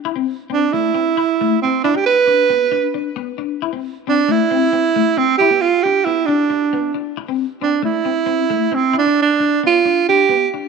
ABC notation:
X:1
M:4/4
L:1/16
Q:1/4=135
K:Am
V:1 name="Alto saxophone"
z4 D2 E8 C2 | D G B8 z6 | z4 D2 E8 C2 | G2 F2 G2 E2 D6 z2 |
z4 D2 E8 C2 | D2 D4 F4 G4 z2 |]
V:2 name="Clean electric guitar"
E C2 z C2 A,2 C2 E2 A,2 C2 | E D2 z D2 B,2 D2 D2 B,2 D2 | E C2 z C2 A,2 C2 C2 A,2 C2 | E B,2 z D2 B,2 D2 D2 B,2 D2 |
z C2 z C2 A,2 C2 C2 A,2 C2 | E D2 z D2 B,2 D2 D2 B,2 D2 |]